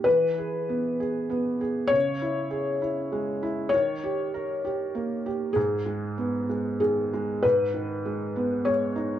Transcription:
<<
  \new Staff \with { instrumentName = "Felt piano" } { \time 3/4 \key gis \minor \tempo 4 = 98 b'2. | cis''2. | cis''2. | gis'2 gis'4 |
b'2 cis''4 | }
  \new Staff \with { instrumentName = "Felt piano" } { \time 3/4 \key gis \minor e8 gis'8 b8 gis'8 b8 gis'8 | cis8 e'8 gis'8 e'8 gis8 e'8 | dis8 g'8 ais'8 g'8 ais8 g'8 | gis,8 gis8 b8 gis8 dis8 gis8 |
gis,8 dis8 gis8 b8 gis8 dis'8 | }
>>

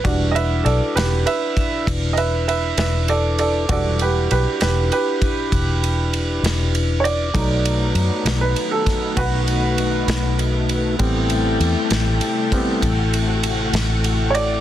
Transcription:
<<
  \new Staff \with { instrumentName = "Upright piano" } { \time 12/8 \key e \minor \tempo 4. = 66 r8 <b' dis'' e''>8 <a' d''>8 <g' b'>8 <b' e''>4 r8 <b' dis'' e''>8 <b' e''>8 <b' e''>8 <a' d''>8 <a' d''>8 | <a' d''>8 <g' b'>8 <g' b'>8 <g' b'>8 <g' b'>2. r8 <cis'' d''>8~ | <cis'' d''>4.~ <cis'' d''>16 b'8 a'8. <fis' b'>2 r4 | r1 r4. <cis'' d''>8 | }
  \new Staff \with { instrumentName = "Upright piano" } { \time 12/8 \key e \minor <g d' fis'>1. | <g d' fis'>1. | <fis a dis'>1. | <g b c'>2~ <g b c'>8 <g b c'>8 r2. | }
  \new Staff \with { instrumentName = "Tonewheel organ" } { \time 12/8 \key e \minor <d' e' b'>1. | <d' e' b'>1. | <a dis' fis' b'>1. | <a e' a' g''>1. | }
  \new Staff \with { instrumentName = "Analog synth pad" } { \clef bass \time 12/8 \key e \minor << { r1. | r1. | <a b>1. | g2. fis'2. | } \\ { r1. | r1. | dis1. | c1. | } >> }
  \new Staff \with { instrumentName = "Fingered electric bass" } { \clef bass \time 12/8 \key e \minor e,,4 b,,16 r16 e,,8 r4 e,,4. e,,4. | e,,4 b,,16 r16 e,,8 r4 e,,4. e,,4. | b,,4 fis,16 r16 b,,8 r4 b,,4. b,,4. | a,,4 e,16 r16 a,,8 r4 a,,4. a,,4. | }
  \new DrumStaff \with { instrumentName = "Drums" } \drummode { \time 12/8 <bd cymr>8 cymr8 cymr8 <cymr sn>8 cymr8 <bd cymr>8 <bd cymr>8 cymr8 cymr8 <cymr sn>8 cymr8 cymr8 | <bd cymr>8 cymr8 cymr8 <cymr sn>8 cymr8 <bd cymr>8 <bd cymr>8 cymr8 cymr8 <cymr sn>8 cymr8 cymr8 | <bd cymr>8 cymr8 cymr8 <cymr sn>8 cymr8 <bd cymr sn>8 <bd cymr>8 cymr8 cymr8 <cymr sn>8 cymr8 cymr8 | <bd cymr>8 cymr8 cymr8 <cymr sn>8 cymr8 <bd cymr>8 <bd cymr>8 cymr8 cymr8 <cymr sn>8 cymr8 cymr8 | }
>>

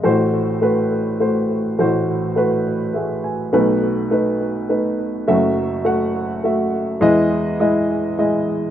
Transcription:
<<
  \new Staff \with { instrumentName = "Upright piano" } { \time 3/4 \key a \lydian \tempo 4 = 103 << { r2. | r2 e''8 gis''8 | r2. | r2. |
r2. | } \\ { <a fis' c''>8. r16 <a fis' b'>8. r16 <a fis' c''>8. r16 | <a fis' c''>8. r16 <a fis' b'>8. r16 <a fis' gis'>8. r16 | <a dis' b'>8. r16 <a dis' b'>8. r16 <a dis' b'>8. r16 | <a fis' e''>8. r16 <a fis' fis''>8. r16 <a fis' e''>8. r16 |
<gis e' dis''>8. r16 <gis e' dis''>8. r16 <gis e' dis''>8. r16 | } >> }
  \new Staff \with { instrumentName = "Upright piano" } { \clef bass \time 3/4 \key a \lydian <a,, a,>2. | <a,, a,>2. | <b,, b,>2. | <fis,, fis,>2. |
<e, e>2. | }
>>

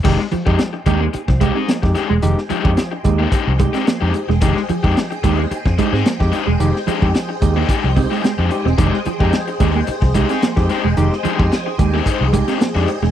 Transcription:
<<
  \new Staff \with { instrumentName = "String machine" } { \time 4/4 \key f \minor \tempo 4 = 110 <aes' c'' ees'' g''>1~ | <aes' c'' ees'' g''>1~ | <aes' c'' ees'' g''>1~ | <aes' c'' ees'' g''>1~ |
<aes' c'' ees'' g''>1~ | <aes' c'' ees'' g''>1 | }
  \new Staff \with { instrumentName = "Overdriven electric guitar" } { \time 4/4 \key f \minor <aes ees' g'>16 r8 <aes ees' g'>16 r8 <aes ees' g'>16 r8. <aes ees' g'>16 <aes ees' aes'>16 r8 <aes ees' g'>16 r16 | r8 <aes ees' g'>16 r4 <aes ees' g'>16 <aes ees' g'>16 r8 <aes ees' g'>16 r16 <aes ees' g'>16 r8 | <aes ees' g'>16 r8 <aes ees' g'>16 r8 <aes ees' g'>16 r8. <aes ees' g'>16 <aes ees' aes'>16 r8 <aes ees' g'>16 r16 | r8 <aes ees' g'>16 r4 <aes ees' g'>16 <aes ees' g'>16 r8 <aes ees' g'>16 r16 <aes ees' g'>16 r8 |
<aes ees' g'>16 r8 <aes ees' g'>16 r8 <aes ees' g'>16 r8. <aes ees' g'>16 <aes ees' aes'>16 r8 <aes ees' g'>16 r16 | r8 <aes ees' g'>16 r4 <aes ees' g'>16 <aes ees' g'>16 r8 <aes ees' g'>16 r16 <aes ees' g'>16 r8 | }
  \new Staff \with { instrumentName = "Tine electric piano" } { \time 4/4 \key f \minor <aes ees' g'>16 r16 f16 <aes ees' g'>16 f16 r16 <aes ees' g'>16 <ees' g'>16 <ees' g'>16 f16 <aes ees' g'>16 r16 f16 <aes ees' g'>16 <ees' g'>16 r16 | <aes ees' g'>16 r16 f16 <aes ees' g'>16 f16 r16 <aes ees' g'>16 <ees' g'>16 <ees' g'>16 f16 <aes ees' g'>16 r16 f16 <aes ees' g'>16 <ees' g'>16 r16 | <aes ees' g'>16 r16 f16 <aes ees' g'>16 f16 r16 <aes ees' g'>16 <ees' g'>16 <ees' g'>16 f16 <aes ees' g'>16 r16 f16 <aes ees' g'>16 <ees' g'>16 r16 | <aes ees' g'>16 r16 f16 <aes ees' g'>16 f16 r16 <aes ees' g'>16 <ees' g'>16 <ees' g'>16 f16 <aes ees' g'>16 r16 <ees' g'>16 f16 <aes ees' g'>16 r16 |
<aes ees' g'>16 r16 f16 <aes ees' g'>16 f16 r16 <aes ees' g'>16 <ees' g'>16 <ees' g'>16 f16 <aes ees' g'>16 r16 f16 <aes ees' g'>16 <ees' g'>16 r16 | <aes ees' g'>16 r16 f16 <aes ees' g'>16 f16 r16 <aes ees' g'>16 <ees' g'>16 <ees' g'>16 f16 <aes ees' g'>16 r16 f16 <aes ees' g'>16 <ees' g'>16 r16 | }
  \new Staff \with { instrumentName = "Clean electric guitar" } { \clef bass \time 4/4 \key f \minor ees16 r16 f16 r8. aes16 bes16 r8 aes16 c'16 bes16 r8 aes16 | ees16 r16 f16 r8. aes16 bes16 r8 aes16 c'16 bes16 r8 aes16 | ees16 r16 f16 r8. aes16 bes16 r8 aes16 c'16 bes16 r8 aes16 | ees16 r16 f16 r8. aes16 bes16 r8 c'16 aes16 aes16 r8 c'16 |
ees16 r16 f16 r8. aes16 bes16 r8 aes16 c'16 bes16 r8 aes16 | ees16 r16 f16 r8. aes16 bes16 r8 aes16 c'16 bes16 r8 aes16 | }
  \new Staff \with { instrumentName = "Fingered electric bass" } { \clef bass \time 4/4 \key f \minor f,,16 r8 f,16 r8 ees,8 r16 c,8 r8 f,16 r16 e,,16 | f,,16 r8 f,16 r8 ees,8 r16 c,8 r8 f,16 r16 e,,16 | f,,16 r8 f,16 r8 ees,8 r16 f,16 r16 aes,16 r16 f,16 r16 e,,16 | f,,16 r8 f,16 r8 ees,8 r16 c,8 r8 f,16 r16 e,,16 |
f,,16 r8 f,16 r8 ees,8 r16 c,8 r8 f,16 r16 e,,16 | f,,16 r8 f,16 r8 ees,8 r16 c,8 r8 f,16 r16 e,,16 | }
  \new DrumStaff \with { instrumentName = "Drums" } \drummode { \time 4/4 <cymc bd>16 sn16 hh16 bd16 <hh sn>8 <hh bd>8 hh16 <bd sn>16 <hh bd>8 <hh sn>16 <bd sn>16 <hh sn>8 | hh16 sn16 hh16 bd16 <hh sn>8 <hh bd>8 <hh bd>8 <hh bd>16 <hh sn>16 <hh sn>8 hh16 sn16 | <hh bd>16 sn16 hh16 bd16 <hh sn>16 hh16 <hh bd>8 hh16 <bd sn>16 <hh bd>16 sn16 <hh sn>16 <bd sn>16 <hh sn>8 | hh16 sn16 hh16 bd16 <hh sn>8 <hh bd>8 <hh bd>8 <hho bd>16 sn16 <hh sn>8 hh16 sn16 |
<hh bd>16 sn16 hh16 bd16 <hh sn>16 hh16 <hh bd>8 hh16 <bd sn>16 <hh bd>16 <hh sn>16 <hh sn>16 <bd sn>16 <hh sn>8 | hh16 sn16 hh16 bd16 <hh sn>8 <hh bd>8 <hh bd>8 <hh bd>16 <hh sn>16 <hh sn>8 hh16 sn16 | }
>>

